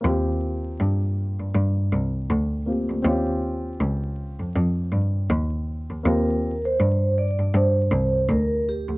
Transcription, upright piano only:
X:1
M:4/4
L:1/8
Q:"Swing 16ths" 1/4=80
K:Eb
V:1 name="Upright piano"
[B,CFG]6- [B,CFG] [B,CFG] | [C_DFG]8 | [B,CFG] z6 z |]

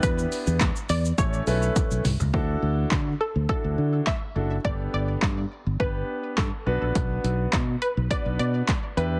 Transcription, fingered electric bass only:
X:1
M:4/4
L:1/16
Q:1/4=104
K:D
V:1 name="Fingered electric bass" clef=bass
E,,2 z E,,2 z E,,2 A,,,2 B,,,2 z B,,, =C,, ^C,, | D,,2 D,,2 D,2 z D,, z D,, D,2 z2 F,,,2 | G,,,2 G,,,2 G,,2 z G,,, z4 G,, z B,,, _B,,, | B,,,2 B,,,2 B,,2 z B,,, z B,,, B,,2 z2 E,,2 |]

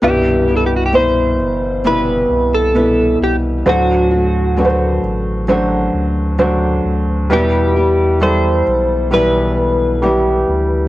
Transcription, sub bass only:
X:1
M:4/4
L:1/8
Q:1/4=66
K:Clyd
V:1 name="Sub bass" clef=bass
C,,3 G,,,2 C,,2 C,, | D,,3 A,,,2 D,,2 D,, | E,,3 B,,,4 D,, |]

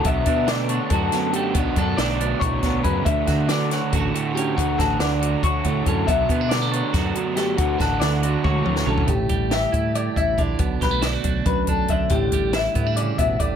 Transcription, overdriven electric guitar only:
X:1
M:7/8
L:1/8
Q:1/4=139
K:D
V:1 name="Overdriven electric guitar"
[B,,F,B,D] [F,B,D] [B,,F,B,D] [F,B,D] [B,,F,B,D] [B,,F,B,D] [B,,F,B,D] | [B,,F,B,D] [F,B,D] [B,,F,B,D] [F,B,D] [B,,F,B,D] [B,,F,B,D] [B,,F,B,D] | [D,F,A,D] [F,A,D] [D,F,A,D] [F,A,D] [D,F,A,D] [D,F,A,D] [D,F,A,D] | [D,F,A,D] [F,A,D] [D,F,A,D] [F,A,D] [D,F,A,D] [D,F,A,D] [D,F,A,D] |
[B,,F,B,D] [F,B,D] [B,,F,B,D] [F,B,D] [B,,F,B,D] [B,,F,B,D] [B,,F,B,D] | [D,F,A,D] [F,A,D] [D,F,A,D] [F,A,D] [D,F,A,D] [D,F,A,D] [D,F,A,D] | z6 z | z6 z |
z6 z |]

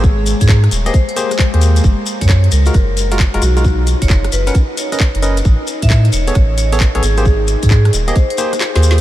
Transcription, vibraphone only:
X:1
M:4/4
L:1/16
Q:"Swing 16ths" 1/4=133
K:G#dor
V:1 name="Vibraphone"
G2 z G G z2 ^B2 B3 z4 | z3 c c z A4 A z3 F F | z3 c c z B z3 c4 z2 | z3 =e e z c4 c z3 G2- |
G2 z G G z2 ^B2 B3 z4 |]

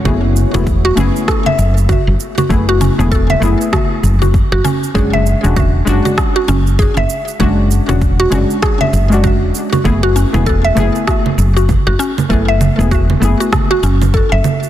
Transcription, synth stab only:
X:1
M:4/4
L:1/16
Q:"Swing 16ths" 1/4=98
K:F#m
V:1 name="Synth stab"
[A,B,EG]3 [A,B,EG]3 [A,B,EG]8- [A,B,EG]2 | [A,B,EG]3 [A,B,EG]3 [A,B,EG]8- [A,B,EG]2 | [G,CDF]3 [G,CDF]3 [G,CDF]8- [G,CDF]2 | [G,CDF]3 [G,CDF]3 [G,CDF]4- [G,CDF] [G,CDF]4- [G,CDF] |
[A,B,EG]3 [A,B,EG]3 [A,B,EG]8- [A,B,EG]2 | [A,B,EG]3 [A,B,EG]3 [A,B,EG]8- [A,B,EG]2 |]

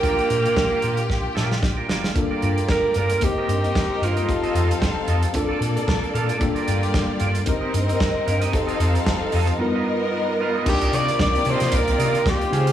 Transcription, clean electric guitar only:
X:1
M:4/4
L:1/16
Q:"Swing 16ths" 1/4=113
K:Gm
V:1 name="Clean electric guitar"
[FBd]2 z [FBf] z [FBf] [FBd] z3 [FBd]2 z [FBd] [FBd] z | z [FBd] [FBd] z3 [FBd] z2 [GBe] z4 [GBf] [GBe] | z [FAe] [FAe] z3 [FAe] z2 [FAd] z4 [FAf] [FAd] | z [FBd] [FBd] z3 [FBd] z2 [GBe] z4 [GBf] [GBe] |
z [FAe] [FAe] z3 [FAe] z2 [F=B^d] z4 [FBf] [FBd] | [K:Cm] z [FBe] [FBe] z3 [FBe] [FBe] z2 [FBe] z3 [Acf] z |]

